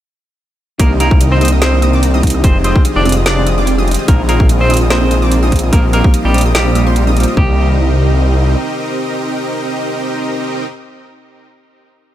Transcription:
0.78 C2 D#3 G3 A#3 C4 D4 D#4 G4 A#4 D#5 D#6, kick, closed hi-hat
0.91 C4
1.00 A#3 C4 D#4 G4 A#4 D#5 D#6, closed hi-hat
1.10 D#3 G3 A#3 D#4 G4 F6, kick
1.21 A#3 C4 D#4 G4 A#4 D#5 D#6, closed hi-hat
1.32 C4 C5
1.40 D#3 G3 A#3 C4 D4 D#4 G4 A#4 D#5 D#6, closed hi-hat
1.45 closed hi-hat
1.48 closed hi-hat
1.52 C4 D#4 G4 A#4 D#5 D#6
1.62 C4 D#4 G4 A#4 C5 D#5 D#6, snare, closed hi-hat
1.72 D#3 G3 A#3 D4 G4
1.82 A#3 C4 D#4 G4 A#4 D#5 D#6, closed hi-hat
1.93 C4 D#4 G4 A#4 D5 D6
2.03 A#3, closed hi-hat
2.13 D#3 G3 A#3 C4 D4 D#4 G4 A#4 D#5 D#6
2.23 D#4, kick, closed hi-hat
2.27 closed hi-hat
2.30 closed hi-hat
2.34 C4 D#4 G4 A#4 D#5 D#6
2.43 F1 D#3 G3 G#3 C4 F4 G4 G#4 C5 D#5 D#6, kick, closed hi-hat
2.55 D#4
2.64 C4 F4 G4 G#4 C5 D#5 D#6, closed hi-hat
2.75 D#3 G3 G#3 C4 D4 F4 G#4 F5 F6, kick
2.85 C4 F4 G4 G#4 D#5 D#6, closed hi-hat
2.96 F1 D4 G4 D5
3.05 D#3 G3 G#3 C4 F4 G4 G#4 D#5 D#6, closed hi-hat
3.09 closed hi-hat
3.12 closed hi-hat
3.16 C4 D#4 F4 G4 G#4 D#5 D#6
3.26 C4 D4 F4 G4 G#4 D5 D#5 D#6, snare, closed hi-hat
3.36 D#3 G3 G#3 C4 D#4
3.46 C4 F4 G4 G#4 D#5 D#6, closed hi-hat
3.58 C4 F4 G4 G#4 D5 D6
3.67 C4, closed hi-hat
3.77 D#3 G3 G#3 C4 D#4 F4 G4 G#4 D#5 D#6
3.88 C4, closed hi-hat
3.91 closed hi-hat
3.94 closed hi-hat
3.99 C4 D#4 F4 G4 G#4 D#5 D#6
4.07 A#1 D#3 F3 G#3 A#3 C4 F4 A#4 D#6, kick, closed hi-hat
4.19 F4
4.29 A#3 C4 F4 G#4 A#4 D#5 D#6, closed hi-hat
4.39 D#3 F3 G#3 D4 F4 F6, kick
4.49 A#3 C4 F4 G#4 A#4 D#5 D#6, closed hi-hat
4.60 C4 C5
4.69 D#3 F3 G#3 C4 D#4 F4 G#4 A#4 D#5 D#6, closed hi-hat
4.74 closed hi-hat
4.77 closed hi-hat
4.81 C4 F4 G#4 A#4 D#5 D#6
4.90 A#3 C4 F4 G#4 A#4 C5 D#5 D#6, snare, closed hi-hat
5.01 D#3 F3 G#3 C4
5.11 A#3 C4 F4 G#4 A#4 D#5 D#6, closed hi-hat
5.22 C4 F4 G#4 A#4 D5 D6
5.31 D#4, closed hi-hat
5.42 D#3 F3 G#3 C4 F4 G#4 A#4 D#5 D#6
5.52 A#3, kick, closed hi-hat
5.56 closed hi-hat
5.59 closed hi-hat
5.63 C4 F4 G#4 A#4 D#5 D#6
5.72 A#1 F3 G3 A#3 C4 F4 G4 A#4 D#5 D#6, kick, closed hi-hat
5.84 C4
5.93 A#3 C4 D#4 F4 G4 A#4 D#5 D#6, closed hi-hat
6.03 F3 G3 A#3 C4 D#4 F4 G4 A#4 F5 F6, kick
6.14 A#3 C4 F4 G4 A#4 D#5 D#6, closed hi-hat
6.25 A#1 G3 C4 G4
6.33 F3 G3 A#3 C4 F4 G4 A#4 D#5 D#6, closed hi-hat
6.38 closed hi-hat
6.41 closed hi-hat
6.45 C4 F4 G4 A#4 D#5 D#6
6.55 G3 C4 F4 G4 A#4 D#5 D#6, snare, closed hi-hat
6.65 F3 G3 A#3 C4 F4
6.74 A#1 F3 G3 A#3 C4 F4 G4 A#4 D#5 D#6, closed hi-hat
6.86 C4 F4 G4 A#4 C5 C6
6.96 A#3, closed hi-hat
7.06 F3 G3 A#3 C4 D#4 F4 G4 A#4 D#5 D#6
7.15 F3 G3 A#3 C4 D#4, closed hi-hat
7.20 closed hi-hat
7.23 closed hi-hat
7.27 C4 F4 G4 A#4 D#5 D#6
7.34 C2 D#3 G3 A#3 C4 D#4 G4 A#4 D#5 D#6, kick

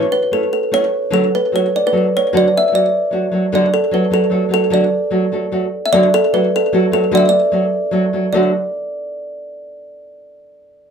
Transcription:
Already playing: C#5
0.12 B4
0.31 A3 C#4 E4 A4
0.53 A4
0.72 A3 C#4 E4 A4 C#5
1.10 D3 F#3 A3 F#4 A4
1.35 B4
1.52 F#3 A3 F#4 A4 C#5
1.76 D5
1.87 B4
1.92 F#3 A3 F#4 A4
2.17 C#5
2.33 D3 F#3 A3 F#4 A4
2.37 D5
2.57 E5
2.72 F#3 A3 F#4 A4 D5
3.11 F#3 A3 F#4 A4
3.31 F#3 A3 F#4 A4
3.52 D3 F#3 A3 F#4 A4 D5
3.74 A4
3.91 F#3 A3 F#4 A4 B4
4.10 F#3 A3 F#4 A4
4.30 F#3 A3 F#4 A4
4.49 F#3 A3 F#4 A4
4.54 A4
4.70 D3 F#3 A3 F#4 A4 D5
5.11 F#3 A3 F#4 A4
5.32 F#3 A3 F#4 A4
5.52 F#3 A3 F#4 A4
5.86 E5
5.93 D3 F#3 A3 F#4 A4 D5
6.14 A4
6.33 F#3 A3 F#4 A4 B4
6.56 A4
6.73 F#3 A3 F#4 A4
6.92 F#3 A3 F#4 A4
7.11 D3 F#3 A3 F#4 A4 D5
7.17 E5
7.29 D5
7.52 F#3 A3 F#4 A4
7.91 F#3 A3 F#4 A4
8.13 F#3 A3 F#4 A4
8.33 D3 F#3 A3 F#4 A4 D5

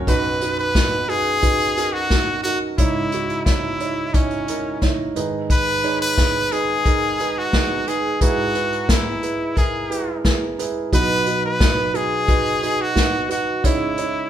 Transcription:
0.07 B1 F#2 D#4 F#4 B4, kick, closed hi-hat
0.41 D#4 F#4 B4, closed hi-hat
0.58 B4, closed hi-hat
0.75 D#4 F#4 B4, kick, snare, closed hi-hat
1.08 D#4 F#4 G#4 B4, closed hi-hat
1.42 D#4 F#4 B4, kick, closed hi-hat
1.77 D#4 F#4 A#4, closed hi-hat
1.93 F#4
2.10 D#4 F#4 A#4, kick, snare, closed hi-hat
2.43 D#4 F#4 A#4, closed hi-hat
2.78 C#2 G#2 D#4 E4 C#5, kick, closed hi-hat
3.12 D#4 E4 F#4, closed hi-hat
3.29 closed hi-hat
3.45 D#4 E4 C#5, kick, snare, closed hi-hat
3.80 D#4 E4 C#5, closed hi-hat
4.14 C#4 D#4 E4 C#5, kick, closed hi-hat
4.31 closed hi-hat
4.48 D#4 E4 A#4, closed hi-hat
4.82 D#4 E4 C#5, kick, snare, closed hi-hat
5.16 G#2 D#3 D#4 G#4 B4, closed hi-hat
5.50 B4, kick, closed hi-hat
5.84 D#4 G#4 C#5, closed hi-hat
6.02 B4
6.18 D#4 G#4 B4, kick, snare, closed hi-hat
6.52 D#4 G#4 B4, closed hi-hat
6.85 D#4 G#4 A#4, kick, closed hi-hat
7.20 D#4 G#4 B4, closed hi-hat
7.38 F#4
7.53 D#4 G#4 B4, kick, snare, closed hi-hat
7.87 D#4 G#4 B4, closed hi-hat
8.21 G#2 G#3 E4 F#4 G#4 B4, kick, closed hi-hat
8.55 E4 G#4 B4, closed hi-hat
8.73 closed hi-hat
8.88 E4 G#4 B4, kick, snare, closed hi-hat
9.23 E4 G#4 B4, closed hi-hat
9.55 E4 G#4 A#4, kick, closed hi-hat
9.90 E4 G#4 B4, closed hi-hat
10.24 E4 G#4 B4, kick, snare, closed hi-hat
10.59 E4 G#4 B4, closed hi-hat
10.92 B2 F#3 D#4 F#4 B4, kick, closed hi-hat
11.26 D#4 F#4 B4, closed hi-hat
11.46 B4
11.60 D#4 F#4 B4, kick, snare, closed hi-hat
11.93 D#4 F#4 G#4 B4, closed hi-hat
12.28 D#4 F#4 B4, kick, closed hi-hat
12.46 closed hi-hat
12.62 D#4 F#4 B4, closed hi-hat
12.82 F#4
12.95 D#4 F#4 B4, kick, snare, closed hi-hat
13.29 D#4 F#4 B4, closed hi-hat
13.64 C#3 G#3 D#4 E4 C#5, kick, closed hi-hat
13.98 D#4 E4 C#5, closed hi-hat

